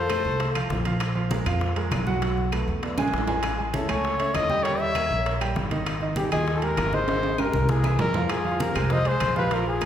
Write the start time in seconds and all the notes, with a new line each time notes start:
Already playing: F2 A4 C5
0.09 A3 A4 C5, high bongo, high conga, high timbale, claves
0.25 C2, high bongo, high conga
0.40 A3 A4 C5, high bongo, high conga, high timbale
0.55 F3 F4 F5, high bongo, high conga, high timbale, claves
0.70 A#1, high bongo, low bongo, high conga, low timbale
0.85 F3 F4 F5, high conga, high timbale
1.00 high bongo, high conga, high timbale, claves
1.15 F3 F4 F5, high conga
1.31 G#3 G#4 A#4, high bongo, high conga, high timbale
1.46 F2 F3 F4 F5, high conga, high timbale, claves
1.61 high bongo, high conga
1.76 G#3 G#4 A#4, high conga, high timbale
1.91 B1, high bongo, low bongo, high conga, high timbale, low timbale, claves
2.07 F#3 F#4 F#5, high conga
2.22 F#3 F#4 F#5, high bongo, high conga, high timbale
2.37 high bongo, high conga
2.52 A3 A4 B4, high bongo, high conga, high timbale, claves
2.68 E2, high bongo, high conga
2.83 B3 B4 D5, high bongo, high conga, high timbale
2.98 A#1 G#3 G#4 G#5, high bongo, high conga, high timbale, claves
3.08 high timbale
3.13 A1, high bongo, low bongo
3.18 low timbale
3.27 G#3 G#4 G#5, low conga, low timbale
3.43 high bongo, high conga, high timbale, claves
3.58 G#3 G#4 G#5, high conga
3.74 C#4 E4 A4 C#5 E5, high bongo, high conga, high timbale
3.89 C#2 A3 A4 C#5 G#5, high conga, high timbale, claves
4.04 high bongo, high conga
4.19 C#4 C#5 E5, high conga, high timbale
4.33 D#2 A4 D#5, high bongo, low bongo, high conga, high timbale, low timbale, claves
4.50 G3 G4 G5, high conga
4.63 G3 G4 A#4 C#5 G5, high bongo, high conga, high timbale
4.80 C#5 E5, high bongo, high conga
4.95 A#3 A#4 C#5, high bongo, high conga, high timbale, claves
5.11 A#1, high bongo, high conga
5.25 A#3 A#4 C#5, high bongo, high conga, high timbale
5.41 G3 G4 G5, high bongo, high conga, high timbale, claves
5.56 G#1, high bongo, low bongo, high conga
5.71 D#3 D#4 D#5, high conga, high timbale
5.86 high bongo, high conga, high timbale, claves
6.01 D#3 D#4 D#5, high conga
6.16 G3 D#4 G4 G#4, high bongo, high conga, high timbale
6.31 D#2 D#3 D#4 F4 G#4 D#5, high conga, high timbale, claves
6.47 high bongo, high conga
6.55 F4 A4
6.62 G#3 G4 A#4, high conga, high timbale
6.77 G#1, high bongo, low bongo, high conga, high timbale, low timbale, claves
6.93 D#3 D#4 G#4 C5 D#5, high conga
7.08 D#3 D#4 D#5, high bongo, high conga, high timbale
7.23 high bongo, high conga, high timbale
7.38 G#3 G4 A#4, high bongo, high conga, high timbale, claves
7.53 C2, high bongo, high conga, high timbale
7.69 G#3 E4 G#4 A#4, high bongo, high conga
7.84 E3 E4 E5, high bongo, high conga, low timbale, claves
7.99 F2 E4 A#4, high bongo, low bongo, low conga, low timbale
8.14 F3 F4 F5, low conga, low timbale
8.29 F4 G#4, high bongo, high conga, high timbale, claves
8.45 F3 F4 F5, high conga
8.60 G4 A#4, high bongo, high conga, high timbale
8.75 C2 G#3 G#4 C5, high conga, low conga, high timbale, claves
8.90 F3 F4 C5 D#5 F5, high bongo, high conga, low conga
9.05 G#3 G#4 C5, high conga, high timbale
9.20 A#1, high bongo, low bongo, high conga, high timbale, claves
9.35 F3 F4 G4 B4 F5, high conga
9.51 F3 F4 A#4 F5, high bongo, high conga, high timbale
9.66 F4 G#4, high bongo, high conga
9.81 G#3 G#4 A#4, high bongo, high conga, high timbale, claves